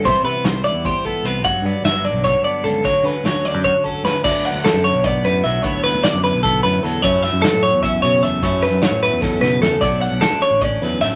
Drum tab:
CC |-------|-------|-------|x------|
HH |xxxxxxx|xxxxxxx|xxxx---|-xxxxxx|
SD |--o----|--o-o--|-ooo--o|--o-o--|
BD |o---oo-|o---o--|o---oo-|o---o--|

CC |-------|-------|-------|-------|
HH |xxxxxxx|xxxxxxx|xxxx---|xxxxxxx|
SD |-ooo---|-oo----|-oooooo|--o--oo|
BD |o---o--|o---o--|o---o--|o---o--|